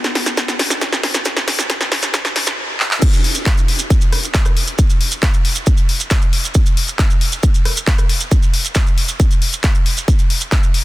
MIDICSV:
0, 0, Header, 1, 2, 480
1, 0, Start_track
1, 0, Tempo, 441176
1, 1367, Time_signature, 4, 2, 24, 8
1, 11796, End_track
2, 0, Start_track
2, 0, Title_t, "Drums"
2, 47, Note_on_c, 9, 38, 79
2, 47, Note_on_c, 9, 42, 54
2, 49, Note_on_c, 9, 70, 35
2, 155, Note_off_c, 9, 38, 0
2, 155, Note_off_c, 9, 42, 0
2, 157, Note_off_c, 9, 70, 0
2, 167, Note_on_c, 9, 38, 92
2, 167, Note_on_c, 9, 46, 87
2, 276, Note_off_c, 9, 38, 0
2, 276, Note_off_c, 9, 46, 0
2, 286, Note_on_c, 9, 38, 88
2, 286, Note_on_c, 9, 42, 55
2, 287, Note_on_c, 9, 70, 69
2, 395, Note_off_c, 9, 38, 0
2, 395, Note_off_c, 9, 42, 0
2, 396, Note_off_c, 9, 70, 0
2, 406, Note_on_c, 9, 38, 95
2, 406, Note_on_c, 9, 42, 80
2, 407, Note_on_c, 9, 36, 116
2, 408, Note_on_c, 9, 70, 66
2, 515, Note_off_c, 9, 38, 0
2, 515, Note_off_c, 9, 42, 0
2, 516, Note_off_c, 9, 36, 0
2, 517, Note_off_c, 9, 70, 0
2, 526, Note_on_c, 9, 38, 83
2, 526, Note_on_c, 9, 42, 52
2, 530, Note_on_c, 9, 70, 36
2, 635, Note_off_c, 9, 38, 0
2, 635, Note_off_c, 9, 42, 0
2, 638, Note_off_c, 9, 70, 0
2, 646, Note_on_c, 9, 38, 95
2, 646, Note_on_c, 9, 46, 97
2, 755, Note_off_c, 9, 38, 0
2, 755, Note_off_c, 9, 46, 0
2, 765, Note_on_c, 9, 38, 85
2, 771, Note_on_c, 9, 70, 81
2, 874, Note_off_c, 9, 38, 0
2, 879, Note_off_c, 9, 70, 0
2, 886, Note_on_c, 9, 38, 99
2, 886, Note_on_c, 9, 42, 82
2, 887, Note_on_c, 9, 36, 114
2, 889, Note_on_c, 9, 70, 64
2, 994, Note_off_c, 9, 38, 0
2, 994, Note_off_c, 9, 42, 0
2, 996, Note_off_c, 9, 36, 0
2, 998, Note_off_c, 9, 70, 0
2, 1006, Note_on_c, 9, 38, 86
2, 1006, Note_on_c, 9, 42, 54
2, 1014, Note_on_c, 9, 70, 37
2, 1115, Note_off_c, 9, 38, 0
2, 1115, Note_off_c, 9, 42, 0
2, 1123, Note_off_c, 9, 70, 0
2, 1126, Note_on_c, 9, 38, 98
2, 1126, Note_on_c, 9, 46, 87
2, 1234, Note_off_c, 9, 38, 0
2, 1234, Note_off_c, 9, 46, 0
2, 1244, Note_on_c, 9, 70, 76
2, 1245, Note_on_c, 9, 38, 92
2, 1245, Note_on_c, 9, 42, 54
2, 1353, Note_off_c, 9, 70, 0
2, 1354, Note_off_c, 9, 38, 0
2, 1354, Note_off_c, 9, 42, 0
2, 1359, Note_on_c, 9, 70, 65
2, 1366, Note_on_c, 9, 38, 100
2, 1366, Note_on_c, 9, 42, 85
2, 1367, Note_on_c, 9, 36, 110
2, 1468, Note_off_c, 9, 70, 0
2, 1475, Note_off_c, 9, 38, 0
2, 1475, Note_off_c, 9, 42, 0
2, 1476, Note_off_c, 9, 36, 0
2, 1486, Note_on_c, 9, 38, 88
2, 1486, Note_on_c, 9, 42, 55
2, 1490, Note_on_c, 9, 70, 38
2, 1595, Note_off_c, 9, 38, 0
2, 1595, Note_off_c, 9, 42, 0
2, 1598, Note_off_c, 9, 70, 0
2, 1606, Note_on_c, 9, 38, 105
2, 1606, Note_on_c, 9, 46, 104
2, 1715, Note_off_c, 9, 38, 0
2, 1715, Note_off_c, 9, 46, 0
2, 1726, Note_on_c, 9, 38, 92
2, 1733, Note_on_c, 9, 70, 81
2, 1835, Note_off_c, 9, 38, 0
2, 1842, Note_off_c, 9, 70, 0
2, 1846, Note_on_c, 9, 38, 106
2, 1846, Note_on_c, 9, 42, 85
2, 1847, Note_on_c, 9, 36, 116
2, 1852, Note_on_c, 9, 70, 68
2, 1955, Note_off_c, 9, 38, 0
2, 1955, Note_off_c, 9, 42, 0
2, 1956, Note_off_c, 9, 36, 0
2, 1960, Note_off_c, 9, 70, 0
2, 1965, Note_on_c, 9, 38, 90
2, 1965, Note_on_c, 9, 42, 54
2, 1971, Note_on_c, 9, 70, 38
2, 2074, Note_off_c, 9, 38, 0
2, 2074, Note_off_c, 9, 42, 0
2, 2080, Note_off_c, 9, 70, 0
2, 2086, Note_on_c, 9, 38, 105
2, 2086, Note_on_c, 9, 46, 86
2, 2194, Note_off_c, 9, 38, 0
2, 2194, Note_off_c, 9, 46, 0
2, 2204, Note_on_c, 9, 70, 68
2, 2206, Note_on_c, 9, 38, 95
2, 2206, Note_on_c, 9, 42, 59
2, 2313, Note_off_c, 9, 70, 0
2, 2315, Note_off_c, 9, 38, 0
2, 2315, Note_off_c, 9, 42, 0
2, 2325, Note_on_c, 9, 38, 107
2, 2325, Note_on_c, 9, 42, 81
2, 2327, Note_on_c, 9, 36, 121
2, 2330, Note_on_c, 9, 70, 59
2, 2434, Note_off_c, 9, 38, 0
2, 2434, Note_off_c, 9, 42, 0
2, 2436, Note_off_c, 9, 36, 0
2, 2438, Note_off_c, 9, 70, 0
2, 2446, Note_on_c, 9, 38, 95
2, 2446, Note_on_c, 9, 42, 55
2, 2455, Note_on_c, 9, 70, 37
2, 2555, Note_off_c, 9, 38, 0
2, 2555, Note_off_c, 9, 42, 0
2, 2564, Note_off_c, 9, 70, 0
2, 2566, Note_on_c, 9, 38, 106
2, 2566, Note_on_c, 9, 46, 105
2, 2675, Note_off_c, 9, 38, 0
2, 2675, Note_off_c, 9, 46, 0
2, 2682, Note_on_c, 9, 70, 75
2, 2687, Note_on_c, 9, 38, 94
2, 2791, Note_off_c, 9, 70, 0
2, 2795, Note_off_c, 9, 38, 0
2, 3047, Note_on_c, 9, 39, 87
2, 3155, Note_off_c, 9, 39, 0
2, 3166, Note_on_c, 9, 39, 100
2, 3275, Note_off_c, 9, 39, 0
2, 3286, Note_on_c, 9, 70, 69
2, 3287, Note_on_c, 9, 36, 117
2, 3287, Note_on_c, 9, 42, 82
2, 3287, Note_on_c, 9, 49, 104
2, 3395, Note_off_c, 9, 70, 0
2, 3396, Note_off_c, 9, 36, 0
2, 3396, Note_off_c, 9, 42, 0
2, 3396, Note_off_c, 9, 49, 0
2, 3407, Note_on_c, 9, 70, 42
2, 3408, Note_on_c, 9, 42, 56
2, 3516, Note_off_c, 9, 70, 0
2, 3517, Note_off_c, 9, 42, 0
2, 3528, Note_on_c, 9, 46, 107
2, 3637, Note_off_c, 9, 46, 0
2, 3642, Note_on_c, 9, 70, 73
2, 3649, Note_on_c, 9, 42, 56
2, 3751, Note_off_c, 9, 70, 0
2, 3757, Note_off_c, 9, 42, 0
2, 3767, Note_on_c, 9, 36, 119
2, 3768, Note_on_c, 9, 39, 122
2, 3768, Note_on_c, 9, 42, 82
2, 3777, Note_on_c, 9, 70, 67
2, 3876, Note_off_c, 9, 36, 0
2, 3877, Note_off_c, 9, 39, 0
2, 3877, Note_off_c, 9, 42, 0
2, 3886, Note_off_c, 9, 70, 0
2, 3889, Note_on_c, 9, 42, 53
2, 3896, Note_on_c, 9, 70, 38
2, 3998, Note_off_c, 9, 42, 0
2, 4005, Note_off_c, 9, 70, 0
2, 4008, Note_on_c, 9, 46, 90
2, 4117, Note_off_c, 9, 46, 0
2, 4123, Note_on_c, 9, 70, 84
2, 4129, Note_on_c, 9, 42, 58
2, 4231, Note_off_c, 9, 70, 0
2, 4237, Note_off_c, 9, 42, 0
2, 4247, Note_on_c, 9, 36, 122
2, 4248, Note_on_c, 9, 42, 80
2, 4250, Note_on_c, 9, 70, 71
2, 4356, Note_off_c, 9, 36, 0
2, 4357, Note_off_c, 9, 42, 0
2, 4359, Note_off_c, 9, 70, 0
2, 4365, Note_on_c, 9, 70, 42
2, 4368, Note_on_c, 9, 42, 54
2, 4474, Note_off_c, 9, 70, 0
2, 4477, Note_off_c, 9, 42, 0
2, 4488, Note_on_c, 9, 37, 59
2, 4488, Note_on_c, 9, 46, 103
2, 4597, Note_off_c, 9, 37, 0
2, 4597, Note_off_c, 9, 46, 0
2, 4608, Note_on_c, 9, 42, 54
2, 4617, Note_on_c, 9, 70, 84
2, 4717, Note_off_c, 9, 42, 0
2, 4726, Note_off_c, 9, 70, 0
2, 4727, Note_on_c, 9, 36, 114
2, 4728, Note_on_c, 9, 39, 124
2, 4728, Note_on_c, 9, 42, 83
2, 4730, Note_on_c, 9, 70, 66
2, 4836, Note_off_c, 9, 36, 0
2, 4837, Note_off_c, 9, 39, 0
2, 4837, Note_off_c, 9, 42, 0
2, 4838, Note_off_c, 9, 70, 0
2, 4844, Note_on_c, 9, 70, 39
2, 4848, Note_on_c, 9, 37, 73
2, 4848, Note_on_c, 9, 42, 53
2, 4953, Note_off_c, 9, 70, 0
2, 4957, Note_off_c, 9, 37, 0
2, 4957, Note_off_c, 9, 42, 0
2, 4968, Note_on_c, 9, 46, 94
2, 5077, Note_off_c, 9, 46, 0
2, 5083, Note_on_c, 9, 70, 80
2, 5088, Note_on_c, 9, 42, 54
2, 5192, Note_off_c, 9, 70, 0
2, 5196, Note_off_c, 9, 42, 0
2, 5206, Note_on_c, 9, 70, 69
2, 5207, Note_on_c, 9, 36, 123
2, 5207, Note_on_c, 9, 42, 81
2, 5314, Note_off_c, 9, 70, 0
2, 5316, Note_off_c, 9, 36, 0
2, 5316, Note_off_c, 9, 42, 0
2, 5328, Note_on_c, 9, 42, 54
2, 5330, Note_on_c, 9, 70, 42
2, 5436, Note_off_c, 9, 42, 0
2, 5438, Note_off_c, 9, 70, 0
2, 5447, Note_on_c, 9, 46, 115
2, 5556, Note_off_c, 9, 46, 0
2, 5564, Note_on_c, 9, 70, 87
2, 5568, Note_on_c, 9, 42, 53
2, 5673, Note_off_c, 9, 70, 0
2, 5677, Note_off_c, 9, 42, 0
2, 5687, Note_on_c, 9, 36, 125
2, 5688, Note_on_c, 9, 39, 127
2, 5688, Note_on_c, 9, 42, 79
2, 5694, Note_on_c, 9, 70, 72
2, 5796, Note_off_c, 9, 36, 0
2, 5797, Note_off_c, 9, 39, 0
2, 5797, Note_off_c, 9, 42, 0
2, 5803, Note_off_c, 9, 70, 0
2, 5808, Note_on_c, 9, 42, 53
2, 5808, Note_on_c, 9, 70, 44
2, 5917, Note_off_c, 9, 42, 0
2, 5917, Note_off_c, 9, 70, 0
2, 5928, Note_on_c, 9, 46, 96
2, 6036, Note_off_c, 9, 46, 0
2, 6042, Note_on_c, 9, 70, 84
2, 6048, Note_on_c, 9, 42, 57
2, 6151, Note_off_c, 9, 70, 0
2, 6157, Note_off_c, 9, 42, 0
2, 6162, Note_on_c, 9, 70, 67
2, 6167, Note_on_c, 9, 36, 127
2, 6168, Note_on_c, 9, 42, 80
2, 6271, Note_off_c, 9, 70, 0
2, 6276, Note_off_c, 9, 36, 0
2, 6277, Note_off_c, 9, 42, 0
2, 6279, Note_on_c, 9, 70, 38
2, 6288, Note_on_c, 9, 42, 52
2, 6388, Note_off_c, 9, 70, 0
2, 6396, Note_off_c, 9, 42, 0
2, 6408, Note_on_c, 9, 46, 107
2, 6517, Note_off_c, 9, 46, 0
2, 6528, Note_on_c, 9, 42, 52
2, 6530, Note_on_c, 9, 70, 78
2, 6637, Note_off_c, 9, 42, 0
2, 6639, Note_off_c, 9, 70, 0
2, 6643, Note_on_c, 9, 70, 68
2, 6647, Note_on_c, 9, 36, 122
2, 6648, Note_on_c, 9, 39, 126
2, 6648, Note_on_c, 9, 42, 83
2, 6752, Note_off_c, 9, 70, 0
2, 6756, Note_off_c, 9, 36, 0
2, 6757, Note_off_c, 9, 39, 0
2, 6757, Note_off_c, 9, 42, 0
2, 6764, Note_on_c, 9, 70, 45
2, 6767, Note_on_c, 9, 42, 53
2, 6873, Note_off_c, 9, 70, 0
2, 6876, Note_off_c, 9, 42, 0
2, 6886, Note_on_c, 9, 46, 95
2, 6995, Note_off_c, 9, 46, 0
2, 7007, Note_on_c, 9, 42, 55
2, 7014, Note_on_c, 9, 70, 73
2, 7116, Note_off_c, 9, 42, 0
2, 7120, Note_off_c, 9, 70, 0
2, 7120, Note_on_c, 9, 70, 73
2, 7127, Note_on_c, 9, 36, 121
2, 7127, Note_on_c, 9, 42, 77
2, 7229, Note_off_c, 9, 70, 0
2, 7236, Note_off_c, 9, 36, 0
2, 7236, Note_off_c, 9, 42, 0
2, 7247, Note_on_c, 9, 42, 51
2, 7247, Note_on_c, 9, 70, 40
2, 7356, Note_off_c, 9, 42, 0
2, 7356, Note_off_c, 9, 70, 0
2, 7367, Note_on_c, 9, 46, 115
2, 7476, Note_off_c, 9, 46, 0
2, 7487, Note_on_c, 9, 42, 52
2, 7489, Note_on_c, 9, 70, 84
2, 7596, Note_off_c, 9, 42, 0
2, 7598, Note_off_c, 9, 70, 0
2, 7607, Note_on_c, 9, 36, 125
2, 7607, Note_on_c, 9, 39, 124
2, 7607, Note_on_c, 9, 42, 79
2, 7612, Note_on_c, 9, 70, 68
2, 7716, Note_off_c, 9, 36, 0
2, 7716, Note_off_c, 9, 39, 0
2, 7716, Note_off_c, 9, 42, 0
2, 7720, Note_off_c, 9, 70, 0
2, 7727, Note_on_c, 9, 42, 51
2, 7728, Note_on_c, 9, 70, 40
2, 7835, Note_off_c, 9, 42, 0
2, 7836, Note_off_c, 9, 70, 0
2, 7846, Note_on_c, 9, 46, 97
2, 7955, Note_off_c, 9, 46, 0
2, 7966, Note_on_c, 9, 42, 54
2, 7967, Note_on_c, 9, 70, 82
2, 8075, Note_off_c, 9, 42, 0
2, 8075, Note_off_c, 9, 70, 0
2, 8086, Note_on_c, 9, 70, 73
2, 8087, Note_on_c, 9, 36, 127
2, 8087, Note_on_c, 9, 42, 78
2, 8194, Note_off_c, 9, 70, 0
2, 8196, Note_off_c, 9, 36, 0
2, 8196, Note_off_c, 9, 42, 0
2, 8207, Note_on_c, 9, 42, 50
2, 8211, Note_on_c, 9, 70, 44
2, 8316, Note_off_c, 9, 42, 0
2, 8320, Note_off_c, 9, 70, 0
2, 8328, Note_on_c, 9, 37, 61
2, 8328, Note_on_c, 9, 46, 111
2, 8437, Note_off_c, 9, 37, 0
2, 8437, Note_off_c, 9, 46, 0
2, 8447, Note_on_c, 9, 42, 52
2, 8452, Note_on_c, 9, 70, 88
2, 8556, Note_off_c, 9, 42, 0
2, 8561, Note_off_c, 9, 70, 0
2, 8567, Note_on_c, 9, 36, 123
2, 8567, Note_on_c, 9, 39, 121
2, 8567, Note_on_c, 9, 42, 79
2, 8575, Note_on_c, 9, 70, 66
2, 8676, Note_off_c, 9, 36, 0
2, 8676, Note_off_c, 9, 39, 0
2, 8676, Note_off_c, 9, 42, 0
2, 8684, Note_off_c, 9, 70, 0
2, 8685, Note_on_c, 9, 70, 46
2, 8687, Note_on_c, 9, 37, 74
2, 8687, Note_on_c, 9, 42, 51
2, 8793, Note_off_c, 9, 70, 0
2, 8796, Note_off_c, 9, 37, 0
2, 8796, Note_off_c, 9, 42, 0
2, 8806, Note_on_c, 9, 46, 98
2, 8915, Note_off_c, 9, 46, 0
2, 8928, Note_on_c, 9, 42, 54
2, 8928, Note_on_c, 9, 70, 75
2, 9037, Note_off_c, 9, 42, 0
2, 9037, Note_off_c, 9, 70, 0
2, 9046, Note_on_c, 9, 70, 65
2, 9047, Note_on_c, 9, 36, 120
2, 9047, Note_on_c, 9, 42, 75
2, 9155, Note_off_c, 9, 70, 0
2, 9156, Note_off_c, 9, 36, 0
2, 9156, Note_off_c, 9, 42, 0
2, 9166, Note_on_c, 9, 70, 37
2, 9168, Note_on_c, 9, 42, 50
2, 9275, Note_off_c, 9, 70, 0
2, 9277, Note_off_c, 9, 42, 0
2, 9287, Note_on_c, 9, 46, 115
2, 9396, Note_off_c, 9, 46, 0
2, 9407, Note_on_c, 9, 42, 51
2, 9412, Note_on_c, 9, 70, 81
2, 9516, Note_off_c, 9, 42, 0
2, 9519, Note_off_c, 9, 70, 0
2, 9519, Note_on_c, 9, 70, 73
2, 9527, Note_on_c, 9, 36, 121
2, 9527, Note_on_c, 9, 39, 115
2, 9527, Note_on_c, 9, 42, 74
2, 9628, Note_off_c, 9, 70, 0
2, 9636, Note_off_c, 9, 36, 0
2, 9636, Note_off_c, 9, 39, 0
2, 9636, Note_off_c, 9, 42, 0
2, 9647, Note_on_c, 9, 42, 50
2, 9650, Note_on_c, 9, 70, 37
2, 9756, Note_off_c, 9, 42, 0
2, 9759, Note_off_c, 9, 70, 0
2, 9766, Note_on_c, 9, 46, 98
2, 9875, Note_off_c, 9, 46, 0
2, 9884, Note_on_c, 9, 70, 86
2, 9886, Note_on_c, 9, 42, 53
2, 9993, Note_off_c, 9, 70, 0
2, 9995, Note_off_c, 9, 42, 0
2, 10006, Note_on_c, 9, 42, 76
2, 10007, Note_on_c, 9, 36, 127
2, 10011, Note_on_c, 9, 70, 65
2, 10115, Note_off_c, 9, 42, 0
2, 10116, Note_off_c, 9, 36, 0
2, 10120, Note_off_c, 9, 70, 0
2, 10127, Note_on_c, 9, 42, 50
2, 10135, Note_on_c, 9, 70, 43
2, 10235, Note_off_c, 9, 42, 0
2, 10244, Note_off_c, 9, 70, 0
2, 10247, Note_on_c, 9, 46, 109
2, 10355, Note_off_c, 9, 46, 0
2, 10367, Note_on_c, 9, 42, 51
2, 10370, Note_on_c, 9, 70, 82
2, 10476, Note_off_c, 9, 42, 0
2, 10479, Note_off_c, 9, 70, 0
2, 10484, Note_on_c, 9, 70, 65
2, 10487, Note_on_c, 9, 36, 120
2, 10487, Note_on_c, 9, 39, 116
2, 10487, Note_on_c, 9, 42, 74
2, 10592, Note_off_c, 9, 70, 0
2, 10595, Note_off_c, 9, 39, 0
2, 10595, Note_off_c, 9, 42, 0
2, 10596, Note_off_c, 9, 36, 0
2, 10607, Note_on_c, 9, 42, 49
2, 10607, Note_on_c, 9, 70, 44
2, 10716, Note_off_c, 9, 42, 0
2, 10716, Note_off_c, 9, 70, 0
2, 10727, Note_on_c, 9, 46, 94
2, 10836, Note_off_c, 9, 46, 0
2, 10847, Note_on_c, 9, 42, 52
2, 10852, Note_on_c, 9, 70, 71
2, 10955, Note_off_c, 9, 42, 0
2, 10961, Note_off_c, 9, 70, 0
2, 10967, Note_on_c, 9, 36, 120
2, 10967, Note_on_c, 9, 42, 75
2, 10974, Note_on_c, 9, 70, 67
2, 11076, Note_off_c, 9, 36, 0
2, 11076, Note_off_c, 9, 42, 0
2, 11083, Note_off_c, 9, 70, 0
2, 11084, Note_on_c, 9, 70, 37
2, 11087, Note_on_c, 9, 42, 53
2, 11192, Note_off_c, 9, 70, 0
2, 11196, Note_off_c, 9, 42, 0
2, 11208, Note_on_c, 9, 46, 106
2, 11316, Note_off_c, 9, 46, 0
2, 11325, Note_on_c, 9, 70, 75
2, 11327, Note_on_c, 9, 42, 52
2, 11434, Note_off_c, 9, 70, 0
2, 11436, Note_off_c, 9, 42, 0
2, 11445, Note_on_c, 9, 70, 66
2, 11447, Note_on_c, 9, 36, 120
2, 11448, Note_on_c, 9, 39, 114
2, 11448, Note_on_c, 9, 42, 77
2, 11554, Note_off_c, 9, 70, 0
2, 11556, Note_off_c, 9, 36, 0
2, 11557, Note_off_c, 9, 39, 0
2, 11557, Note_off_c, 9, 42, 0
2, 11567, Note_on_c, 9, 70, 38
2, 11568, Note_on_c, 9, 42, 48
2, 11676, Note_off_c, 9, 70, 0
2, 11677, Note_off_c, 9, 42, 0
2, 11688, Note_on_c, 9, 46, 90
2, 11796, Note_off_c, 9, 46, 0
2, 11796, End_track
0, 0, End_of_file